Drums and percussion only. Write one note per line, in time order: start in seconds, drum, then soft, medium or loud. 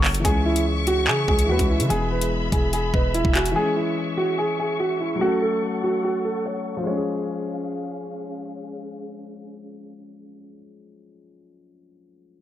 0.04 clap loud
0.04 open hi-hat medium
0.14 closed hi-hat medium
0.25 kick loud
0.25 closed hi-hat medium
0.56 closed hi-hat medium
0.87 closed hi-hat medium
1.08 clap loud
1.28 kick medium
1.39 closed hi-hat medium
1.59 kick loud
1.59 closed hi-hat medium
1.80 closed hi-hat medium
1.90 closed hi-hat medium
2.21 closed hi-hat medium
2.52 kick loud
2.52 closed hi-hat medium
2.73 closed hi-hat medium
2.94 kick medium
3.14 closed hi-hat medium
3.25 kick loud
3.35 clap loud
3.35 closed hi-hat medium
3.46 closed hi-hat medium